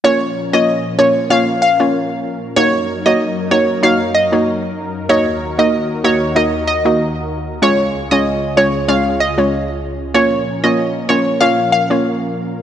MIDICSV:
0, 0, Header, 1, 4, 480
1, 0, Start_track
1, 0, Key_signature, -5, "minor"
1, 0, Tempo, 631579
1, 32, Time_signature, 4, 2, 24, 8
1, 9591, End_track
2, 0, Start_track
2, 0, Title_t, "Synth pluck"
2, 0, Program_c, 0, 84
2, 33, Note_on_c, 0, 73, 96
2, 152, Note_off_c, 0, 73, 0
2, 406, Note_on_c, 0, 75, 76
2, 500, Note_off_c, 0, 75, 0
2, 750, Note_on_c, 0, 73, 81
2, 871, Note_off_c, 0, 73, 0
2, 992, Note_on_c, 0, 77, 88
2, 1112, Note_off_c, 0, 77, 0
2, 1232, Note_on_c, 0, 77, 77
2, 1352, Note_off_c, 0, 77, 0
2, 1949, Note_on_c, 0, 73, 102
2, 2070, Note_off_c, 0, 73, 0
2, 2324, Note_on_c, 0, 75, 80
2, 2419, Note_off_c, 0, 75, 0
2, 2670, Note_on_c, 0, 73, 80
2, 2790, Note_off_c, 0, 73, 0
2, 2913, Note_on_c, 0, 77, 80
2, 3032, Note_off_c, 0, 77, 0
2, 3151, Note_on_c, 0, 75, 76
2, 3271, Note_off_c, 0, 75, 0
2, 3871, Note_on_c, 0, 73, 92
2, 3991, Note_off_c, 0, 73, 0
2, 4247, Note_on_c, 0, 75, 76
2, 4341, Note_off_c, 0, 75, 0
2, 4594, Note_on_c, 0, 73, 85
2, 4713, Note_off_c, 0, 73, 0
2, 4834, Note_on_c, 0, 75, 83
2, 4953, Note_off_c, 0, 75, 0
2, 5073, Note_on_c, 0, 75, 77
2, 5192, Note_off_c, 0, 75, 0
2, 5796, Note_on_c, 0, 73, 97
2, 5914, Note_off_c, 0, 73, 0
2, 6165, Note_on_c, 0, 75, 80
2, 6260, Note_off_c, 0, 75, 0
2, 6515, Note_on_c, 0, 73, 85
2, 6633, Note_off_c, 0, 73, 0
2, 6752, Note_on_c, 0, 77, 80
2, 6872, Note_off_c, 0, 77, 0
2, 6995, Note_on_c, 0, 75, 76
2, 7113, Note_off_c, 0, 75, 0
2, 7711, Note_on_c, 0, 73, 91
2, 7831, Note_off_c, 0, 73, 0
2, 8084, Note_on_c, 0, 75, 74
2, 8179, Note_off_c, 0, 75, 0
2, 8428, Note_on_c, 0, 73, 82
2, 8550, Note_off_c, 0, 73, 0
2, 8668, Note_on_c, 0, 77, 84
2, 8790, Note_off_c, 0, 77, 0
2, 8910, Note_on_c, 0, 77, 78
2, 9031, Note_off_c, 0, 77, 0
2, 9591, End_track
3, 0, Start_track
3, 0, Title_t, "Synth pluck"
3, 0, Program_c, 1, 84
3, 29, Note_on_c, 1, 58, 87
3, 30, Note_on_c, 1, 61, 84
3, 32, Note_on_c, 1, 65, 82
3, 34, Note_on_c, 1, 73, 101
3, 170, Note_off_c, 1, 58, 0
3, 171, Note_off_c, 1, 61, 0
3, 172, Note_off_c, 1, 65, 0
3, 172, Note_off_c, 1, 73, 0
3, 405, Note_on_c, 1, 58, 77
3, 406, Note_on_c, 1, 61, 70
3, 408, Note_on_c, 1, 65, 69
3, 409, Note_on_c, 1, 73, 82
3, 726, Note_off_c, 1, 58, 0
3, 726, Note_off_c, 1, 61, 0
3, 727, Note_off_c, 1, 65, 0
3, 728, Note_off_c, 1, 73, 0
3, 751, Note_on_c, 1, 58, 76
3, 751, Note_on_c, 1, 61, 67
3, 753, Note_on_c, 1, 65, 70
3, 755, Note_on_c, 1, 73, 85
3, 974, Note_off_c, 1, 58, 0
3, 975, Note_off_c, 1, 61, 0
3, 975, Note_off_c, 1, 65, 0
3, 976, Note_off_c, 1, 73, 0
3, 990, Note_on_c, 1, 58, 91
3, 991, Note_on_c, 1, 61, 83
3, 992, Note_on_c, 1, 65, 76
3, 995, Note_on_c, 1, 73, 97
3, 1131, Note_off_c, 1, 58, 0
3, 1131, Note_off_c, 1, 61, 0
3, 1132, Note_off_c, 1, 65, 0
3, 1133, Note_off_c, 1, 73, 0
3, 1366, Note_on_c, 1, 58, 75
3, 1367, Note_on_c, 1, 61, 67
3, 1369, Note_on_c, 1, 65, 68
3, 1370, Note_on_c, 1, 73, 79
3, 1479, Note_off_c, 1, 58, 0
3, 1479, Note_off_c, 1, 61, 0
3, 1480, Note_off_c, 1, 65, 0
3, 1481, Note_off_c, 1, 73, 0
3, 1949, Note_on_c, 1, 58, 91
3, 1951, Note_on_c, 1, 63, 81
3, 1953, Note_on_c, 1, 66, 83
3, 1955, Note_on_c, 1, 73, 99
3, 2090, Note_off_c, 1, 58, 0
3, 2091, Note_off_c, 1, 63, 0
3, 2092, Note_off_c, 1, 66, 0
3, 2093, Note_off_c, 1, 73, 0
3, 2324, Note_on_c, 1, 58, 75
3, 2326, Note_on_c, 1, 63, 72
3, 2327, Note_on_c, 1, 66, 69
3, 2329, Note_on_c, 1, 73, 81
3, 2645, Note_off_c, 1, 58, 0
3, 2646, Note_off_c, 1, 63, 0
3, 2647, Note_off_c, 1, 66, 0
3, 2648, Note_off_c, 1, 73, 0
3, 2668, Note_on_c, 1, 58, 76
3, 2669, Note_on_c, 1, 63, 68
3, 2671, Note_on_c, 1, 66, 68
3, 2673, Note_on_c, 1, 73, 82
3, 2893, Note_off_c, 1, 58, 0
3, 2894, Note_off_c, 1, 63, 0
3, 2894, Note_off_c, 1, 66, 0
3, 2895, Note_off_c, 1, 73, 0
3, 2908, Note_on_c, 1, 58, 83
3, 2909, Note_on_c, 1, 63, 79
3, 2910, Note_on_c, 1, 66, 82
3, 2912, Note_on_c, 1, 73, 96
3, 3050, Note_off_c, 1, 58, 0
3, 3050, Note_off_c, 1, 63, 0
3, 3051, Note_off_c, 1, 66, 0
3, 3052, Note_off_c, 1, 73, 0
3, 3285, Note_on_c, 1, 58, 73
3, 3287, Note_on_c, 1, 63, 67
3, 3288, Note_on_c, 1, 66, 70
3, 3288, Note_on_c, 1, 73, 81
3, 3398, Note_off_c, 1, 58, 0
3, 3399, Note_off_c, 1, 63, 0
3, 3400, Note_off_c, 1, 66, 0
3, 3400, Note_off_c, 1, 73, 0
3, 3869, Note_on_c, 1, 58, 89
3, 3871, Note_on_c, 1, 63, 82
3, 3873, Note_on_c, 1, 66, 82
3, 3874, Note_on_c, 1, 75, 101
3, 4010, Note_off_c, 1, 58, 0
3, 4011, Note_off_c, 1, 63, 0
3, 4012, Note_off_c, 1, 66, 0
3, 4013, Note_off_c, 1, 75, 0
3, 4245, Note_on_c, 1, 58, 76
3, 4246, Note_on_c, 1, 63, 68
3, 4249, Note_on_c, 1, 66, 68
3, 4249, Note_on_c, 1, 75, 84
3, 4566, Note_off_c, 1, 58, 0
3, 4566, Note_off_c, 1, 63, 0
3, 4568, Note_off_c, 1, 66, 0
3, 4568, Note_off_c, 1, 75, 0
3, 4591, Note_on_c, 1, 58, 75
3, 4593, Note_on_c, 1, 63, 72
3, 4594, Note_on_c, 1, 66, 73
3, 4595, Note_on_c, 1, 75, 84
3, 4814, Note_off_c, 1, 58, 0
3, 4816, Note_off_c, 1, 63, 0
3, 4816, Note_off_c, 1, 66, 0
3, 4817, Note_off_c, 1, 75, 0
3, 4830, Note_on_c, 1, 58, 88
3, 4832, Note_on_c, 1, 63, 75
3, 4834, Note_on_c, 1, 66, 82
3, 4836, Note_on_c, 1, 75, 94
3, 4971, Note_off_c, 1, 58, 0
3, 4971, Note_off_c, 1, 63, 0
3, 4973, Note_off_c, 1, 66, 0
3, 4974, Note_off_c, 1, 75, 0
3, 5206, Note_on_c, 1, 58, 72
3, 5208, Note_on_c, 1, 63, 71
3, 5210, Note_on_c, 1, 66, 69
3, 5210, Note_on_c, 1, 75, 79
3, 5319, Note_off_c, 1, 58, 0
3, 5319, Note_off_c, 1, 63, 0
3, 5321, Note_off_c, 1, 66, 0
3, 5321, Note_off_c, 1, 75, 0
3, 5792, Note_on_c, 1, 56, 93
3, 5792, Note_on_c, 1, 61, 87
3, 5794, Note_on_c, 1, 65, 84
3, 5796, Note_on_c, 1, 73, 103
3, 5931, Note_off_c, 1, 56, 0
3, 5932, Note_off_c, 1, 61, 0
3, 5933, Note_off_c, 1, 65, 0
3, 5934, Note_off_c, 1, 73, 0
3, 6167, Note_on_c, 1, 56, 76
3, 6169, Note_on_c, 1, 61, 69
3, 6170, Note_on_c, 1, 65, 70
3, 6171, Note_on_c, 1, 73, 80
3, 6487, Note_off_c, 1, 56, 0
3, 6488, Note_off_c, 1, 61, 0
3, 6488, Note_off_c, 1, 65, 0
3, 6489, Note_off_c, 1, 73, 0
3, 6512, Note_on_c, 1, 56, 75
3, 6513, Note_on_c, 1, 61, 72
3, 6515, Note_on_c, 1, 65, 69
3, 6515, Note_on_c, 1, 73, 82
3, 6735, Note_off_c, 1, 56, 0
3, 6736, Note_off_c, 1, 61, 0
3, 6736, Note_off_c, 1, 65, 0
3, 6737, Note_off_c, 1, 73, 0
3, 6750, Note_on_c, 1, 56, 88
3, 6752, Note_on_c, 1, 61, 75
3, 6754, Note_on_c, 1, 65, 79
3, 6755, Note_on_c, 1, 73, 95
3, 6890, Note_off_c, 1, 56, 0
3, 6892, Note_off_c, 1, 61, 0
3, 6893, Note_off_c, 1, 65, 0
3, 6893, Note_off_c, 1, 73, 0
3, 7125, Note_on_c, 1, 56, 71
3, 7127, Note_on_c, 1, 61, 68
3, 7127, Note_on_c, 1, 65, 68
3, 7130, Note_on_c, 1, 73, 86
3, 7238, Note_off_c, 1, 56, 0
3, 7239, Note_off_c, 1, 61, 0
3, 7239, Note_off_c, 1, 65, 0
3, 7241, Note_off_c, 1, 73, 0
3, 7710, Note_on_c, 1, 58, 89
3, 7712, Note_on_c, 1, 61, 86
3, 7713, Note_on_c, 1, 65, 80
3, 7715, Note_on_c, 1, 73, 104
3, 7850, Note_off_c, 1, 58, 0
3, 7852, Note_off_c, 1, 61, 0
3, 7852, Note_off_c, 1, 65, 0
3, 7853, Note_off_c, 1, 73, 0
3, 8084, Note_on_c, 1, 58, 75
3, 8086, Note_on_c, 1, 61, 69
3, 8086, Note_on_c, 1, 65, 70
3, 8089, Note_on_c, 1, 73, 83
3, 8405, Note_off_c, 1, 58, 0
3, 8406, Note_off_c, 1, 61, 0
3, 8406, Note_off_c, 1, 65, 0
3, 8408, Note_off_c, 1, 73, 0
3, 8432, Note_on_c, 1, 58, 75
3, 8434, Note_on_c, 1, 61, 71
3, 8435, Note_on_c, 1, 65, 68
3, 8437, Note_on_c, 1, 73, 83
3, 8655, Note_off_c, 1, 58, 0
3, 8656, Note_off_c, 1, 61, 0
3, 8657, Note_off_c, 1, 65, 0
3, 8657, Note_off_c, 1, 73, 0
3, 8670, Note_on_c, 1, 58, 87
3, 8673, Note_on_c, 1, 61, 81
3, 8674, Note_on_c, 1, 65, 80
3, 8674, Note_on_c, 1, 73, 94
3, 8811, Note_off_c, 1, 58, 0
3, 8812, Note_off_c, 1, 61, 0
3, 8813, Note_off_c, 1, 65, 0
3, 8813, Note_off_c, 1, 73, 0
3, 9046, Note_on_c, 1, 58, 72
3, 9046, Note_on_c, 1, 61, 71
3, 9049, Note_on_c, 1, 65, 69
3, 9049, Note_on_c, 1, 73, 82
3, 9159, Note_off_c, 1, 58, 0
3, 9159, Note_off_c, 1, 61, 0
3, 9160, Note_off_c, 1, 65, 0
3, 9160, Note_off_c, 1, 73, 0
3, 9591, End_track
4, 0, Start_track
4, 0, Title_t, "Analog synth pad"
4, 0, Program_c, 2, 89
4, 33, Note_on_c, 2, 53, 73
4, 33, Note_on_c, 2, 70, 86
4, 34, Note_on_c, 2, 61, 71
4, 35, Note_on_c, 2, 46, 75
4, 1933, Note_off_c, 2, 53, 0
4, 1934, Note_off_c, 2, 46, 0
4, 1934, Note_off_c, 2, 61, 0
4, 1952, Note_on_c, 2, 42, 74
4, 1953, Note_on_c, 2, 54, 71
4, 1954, Note_on_c, 2, 63, 72
4, 3853, Note_off_c, 2, 42, 0
4, 3853, Note_off_c, 2, 54, 0
4, 3854, Note_off_c, 2, 63, 0
4, 3873, Note_on_c, 2, 66, 73
4, 3874, Note_on_c, 2, 39, 75
4, 3874, Note_on_c, 2, 51, 69
4, 5762, Note_off_c, 2, 70, 0
4, 5773, Note_off_c, 2, 39, 0
4, 5773, Note_off_c, 2, 66, 0
4, 5774, Note_off_c, 2, 51, 0
4, 5790, Note_on_c, 2, 37, 80
4, 5790, Note_on_c, 2, 65, 72
4, 5790, Note_on_c, 2, 68, 87
4, 5792, Note_on_c, 2, 49, 69
4, 7691, Note_off_c, 2, 37, 0
4, 7692, Note_off_c, 2, 49, 0
4, 7692, Note_off_c, 2, 65, 0
4, 7692, Note_off_c, 2, 68, 0
4, 7713, Note_on_c, 2, 61, 69
4, 7714, Note_on_c, 2, 46, 78
4, 7714, Note_on_c, 2, 70, 84
4, 7715, Note_on_c, 2, 53, 73
4, 9591, Note_off_c, 2, 46, 0
4, 9591, Note_off_c, 2, 53, 0
4, 9591, Note_off_c, 2, 61, 0
4, 9591, Note_off_c, 2, 70, 0
4, 9591, End_track
0, 0, End_of_file